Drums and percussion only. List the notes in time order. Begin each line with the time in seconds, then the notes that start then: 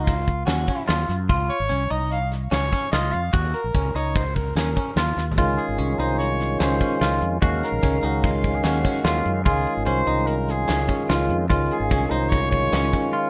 0.07 kick, closed hi-hat
0.28 kick, closed hi-hat
0.48 snare, closed hi-hat
0.68 kick, closed hi-hat
0.89 snare, closed hi-hat
1.09 snare, closed hi-hat
1.29 kick, closed hi-hat
1.50 closed hi-hat
1.71 closed hi-hat
1.91 closed hi-hat
2.11 closed hi-hat
2.32 snare, closed hi-hat
2.52 snare, closed hi-hat
2.73 kick, closed hi-hat
2.93 snare, closed hi-hat
3.13 closed hi-hat
3.33 kick, closed hi-hat
3.54 closed hi-hat
3.74 kick, closed hi-hat
3.96 closed hi-hat
4.16 kick, closed hi-hat
4.36 kick, closed hi-hat
4.57 snare, closed hi-hat
4.77 kick, closed hi-hat
4.97 snare, closed hi-hat
5.18 snare
5.31 floor tom
5.38 kick, closed hi-hat
5.58 closed hi-hat
5.78 closed hi-hat
6.00 closed hi-hat
6.20 closed hi-hat
6.40 snare, closed hi-hat
6.60 snare, closed hi-hat
6.81 kick, closed hi-hat
7.01 snare, closed hi-hat
7.22 closed hi-hat
7.42 kick, closed hi-hat
7.63 snare, closed hi-hat
7.83 kick, closed hi-hat
8.04 closed hi-hat
8.24 kick, closed hi-hat
8.44 kick, closed hi-hat
8.64 snare, closed hi-hat
8.84 kick, snare, closed hi-hat
9.05 snare, closed hi-hat
9.25 closed hi-hat
9.46 kick, closed hi-hat
9.67 closed hi-hat
9.86 closed hi-hat
10.07 closed hi-hat
10.27 closed hi-hat
10.49 snare, closed hi-hat
10.69 snare, closed hi-hat
10.89 kick, closed hi-hat
11.10 snare, closed hi-hat
11.30 closed hi-hat
11.50 kick, closed hi-hat
11.71 closed hi-hat
11.91 kick, closed hi-hat
12.12 closed hi-hat
12.32 kick, closed hi-hat
12.52 kick, closed hi-hat
12.73 snare, closed hi-hat
12.93 kick, closed hi-hat